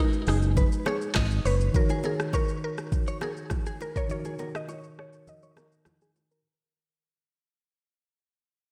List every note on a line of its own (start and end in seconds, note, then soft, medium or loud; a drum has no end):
0.00 1.69 G#3 medium
0.00 0.26 D#4 loud
0.00 1.70 D#4 medium
0.00 1.71 F#4 medium
0.00 1.72 B4 medium
0.13 shaker soft
0.27 0.62 F#1 loud
0.27 1.42 D#4 loud
0.27 0.37 G#4 medium
0.27 cross-stick loud
0.27 open hi-hat medium
0.42 shaker medium
0.57 0.66 B4 medium
0.57 kick loud
0.57 low conga medium
0.57 shaker medium
0.72 shaker medium
0.86 1.47 G#4 medium
0.86 0.96 C#5 medium
0.86 cross-stick loud
0.86 low bongo medium
0.86 shaker soft
1.01 shaker soft
1.15 1.39 G#1 loud
1.15 1.25 D#5 medium
1.15 kick loud
1.15 cross-stick medium
1.15 clap loud
1.15 high bongo medium
1.15 low conga medium
1.15 shaker medium
1.31 shaker medium
1.45 1.68 F#1 medium
1.45 1.73 B4 medium
1.45 1.55 C#5 medium
1.45 open hi-hat medium
1.45 shaker medium
1.61 shaker medium
1.72 4.04 D#3 medium
1.72 4.05 D#4 medium
1.72 4.06 F#4 medium
1.72 2.05 A#4 medium
1.72 kick loud
1.72 low conga medium
1.72 shaker medium
1.77 4.07 C#5 medium
1.89 1.99 G#4 medium
1.89 high bongo soft
1.89 shaker medium
2.03 2.32 G#4 medium
2.03 2.13 A#4 medium
2.03 low bongo medium
2.03 shaker medium
2.20 cross-stick loud
2.20 shaker soft
2.33 2.48 A#4 loud
2.33 2.51 C#5 medium
2.33 kick medium
2.33 high bongo medium
2.33 shaker medium
2.48 shaker soft
2.64 3.24 A#4 loud
2.78 cross-stick medium
2.78 shaker soft
2.92 kick loud
2.92 low conga medium
2.92 shaker medium
3.07 3.16 C#5 medium
3.07 shaker medium
3.21 3.77 G#4 loud
3.21 3.31 A#4 medium
3.21 cross-stick medium
3.21 low bongo medium
3.21 shaker soft
3.37 shaker soft
3.50 kick medium
3.50 cross-stick medium
3.50 high bongo medium
3.50 low conga medium
3.50 shaker medium
3.66 3.75 G#4 medium
3.66 shaker medium
3.81 3.97 A#4 medium
3.81 high bongo medium
3.81 shaker medium
3.96 4.04 A#4 medium
3.96 4.10 C#5 loud
3.96 kick medium
3.96 shaker medium
4.07 6.40 D#3 medium
4.07 6.41 D#4 medium
4.07 6.41 F#4 medium
4.07 4.56 C#5 loud
4.07 low conga medium
4.07 shaker medium
4.12 6.42 A#4 medium
4.25 4.34 G#4 medium
4.25 high bongo medium
4.25 shaker medium
4.39 4.49 A#4 medium
4.39 low bongo medium
4.39 shaker medium
4.55 4.96 D#5 loud
4.55 cross-stick loud
4.55 shaker soft
4.69 4.86 C#5 medium
4.69 high bongo medium
4.69 shaker medium
4.84 shaker soft
4.99 5.29 C#5 loud
4.99 cross-stick medium
5.13 shaker soft
5.27 5.83 D#5 loud
5.27 low conga medium
5.27 shaker medium
5.43 5.51 C#5 medium
5.43 shaker medium
5.57 5.66 A#4 medium
5.57 cross-stick medium
5.57 low bongo medium
5.57 shaker soft
5.72 shaker soft
5.85 cross-stick medium
5.85 high bongo medium
5.85 low conga medium
5.85 shaker medium
6.01 6.10 G#4 medium
6.01 shaker medium
6.16 high bongo medium
6.16 shaker medium
6.31 6.40 A#4 medium
6.31 shaker medium